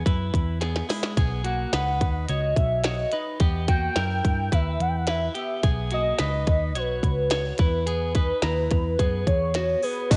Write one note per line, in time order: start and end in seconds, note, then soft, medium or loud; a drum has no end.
0.06 0.30 F#2 medium
0.06 0.58 E4 soft
0.06 0.58 B4 medium
0.06 kick medium
0.06 closed hi-hat medium
0.34 0.81 E2 medium
0.34 kick medium
0.34 closed hi-hat medium
0.61 0.90 B3 soft
0.61 0.88 G#4 medium
0.61 snare soft
0.61 closed hi-hat medium
0.76 snare soft
0.89 1.17 G#3 medium
0.89 1.17 E4 medium
0.89 snare medium
0.89 open hi-hat medium
1.03 snare medium
1.17 1.65 B1 medium
1.17 1.44 B3 medium
1.17 1.45 G#4 medium
1.17 kick medium
1.17 closed hi-hat medium
1.44 1.73 A#3 medium
1.44 1.73 F#4 medium
1.44 2.25 F#5 loud
1.44 closed hi-hat medium
1.73 2.01 C#2 medium
1.73 2.26 D#4 medium
1.73 2.26 B4 medium
1.73 snare medium
1.73 closed hi-hat medium
2.01 2.25 D#2 medium
2.01 kick medium
2.01 closed hi-hat medium
2.26 2.53 C#2 medium
2.26 2.82 C#5 medium
2.26 2.56 D#5 medium
2.26 closed hi-hat medium
2.30 2.82 F#4 soft
2.55 3.04 B1 medium
2.55 2.85 E5 loud
2.55 kick medium
2.55 closed hi-hat medium
2.84 3.13 F#4 soft
2.84 3.12 C#5 medium
2.84 3.12 D#5 medium
2.84 snare loud
2.84 closed hi-hat medium
3.12 3.41 D#4 medium
3.12 3.40 B4 medium
3.12 3.25 D#5 medium
3.12 closed hi-hat medium
3.40 3.88 E2 medium
3.40 3.68 B3 medium
3.40 3.68 G4 medium
3.40 kick loud
3.40 closed hi-hat medium
3.68 3.97 A#3 soft
3.68 3.96 F#4 medium
3.68 4.55 G5 loud
3.68 kick medium
3.68 closed hi-hat medium
3.96 4.20 F#2 medium
3.96 4.49 E4 medium
3.96 4.49 A#4 medium
3.96 snare medium
3.96 closed hi-hat medium
4.25 4.48 G2 medium
4.25 kick medium
4.25 closed hi-hat medium
4.52 4.76 D#2 medium
4.52 5.05 E4 soft
4.52 5.05 B4 medium
4.52 4.83 E5 medium
4.52 kick medium
4.52 closed hi-hat medium
4.80 5.28 E2 medium
4.80 4.89 F#5 medium
4.80 closed hi-hat medium
4.88 4.98 G5 medium
4.96 5.10 F#5 loud
5.07 5.35 E4 medium
5.07 5.34 B4 medium
5.07 5.36 E5 medium
5.07 snare loud
5.07 closed hi-hat medium
5.34 5.63 B3 soft
5.34 5.63 G4 medium
5.34 5.63 E5 medium
5.34 closed hi-hat medium
5.63 6.11 B1 medium
5.63 5.91 B3 medium
5.63 5.92 G#4 medium
5.63 kick loud
5.63 closed hi-hat medium
5.91 6.20 A#3 medium
5.91 6.20 F#4 medium
5.91 6.79 D#5 loud
5.91 closed hi-hat medium
6.19 6.44 C#2 medium
6.19 6.73 D#4 medium
6.19 6.72 B4 medium
6.19 snare medium
6.19 closed hi-hat medium
6.47 6.75 D#2 medium
6.47 kick medium
6.47 closed hi-hat medium
6.75 6.99 B1 medium
6.75 7.29 F#4 soft
6.75 7.60 B4 medium
6.75 7.28 C#5 medium
6.75 closed hi-hat medium
7.03 7.51 C#2 medium
7.03 kick medium
7.03 closed hi-hat medium
7.30 7.59 F#4 soft
7.30 7.59 C#5 medium
7.30 snare loud
7.30 closed hi-hat medium
7.58 8.31 E2 medium
7.58 7.87 E4 medium
7.58 7.86 B4 medium
7.58 9.24 B4 loud
7.58 kick loud
7.58 closed hi-hat medium
7.87 8.16 B3 medium
7.87 8.15 G#4 medium
7.87 closed hi-hat medium
8.15 8.44 D#4 medium
8.15 8.43 B4 medium
8.15 kick medium
8.15 closed hi-hat medium
8.42 8.67 D#2 medium
8.42 8.96 E4 medium
8.42 8.96 A#5 medium
8.42 snare medium
8.42 closed hi-hat medium
8.71 8.95 E2 medium
8.71 kick medium
8.71 closed hi-hat medium
8.99 9.23 F#2 medium
8.99 9.52 B3 soft
8.99 9.52 G#4 medium
8.99 kick medium
8.99 closed hi-hat medium
9.27 9.75 E2 medium
9.27 9.85 C#5 loud
9.27 kick medium
9.27 closed hi-hat medium
9.54 9.83 B3 medium
9.54 9.83 F#4 medium
9.54 snare loud
9.54 closed hi-hat medium
9.83 10.12 B3 medium
9.83 10.11 G#4 medium
9.83 10.12 B4 medium
9.83 open hi-hat medium
10.10 10.17 B1 medium
10.10 10.17 B2 medium
10.10 10.17 D#3 medium
10.10 10.17 F#3 medium
10.10 10.17 B3 medium
10.10 10.17 C#4 medium
10.10 10.17 D#4 medium
10.10 10.17 F#4 medium
10.10 10.17 B4 medium
10.10 10.17 D#5 loud
10.10 kick loud
10.10 open hi-hat medium
10.10 crash loud
10.10 tambourine medium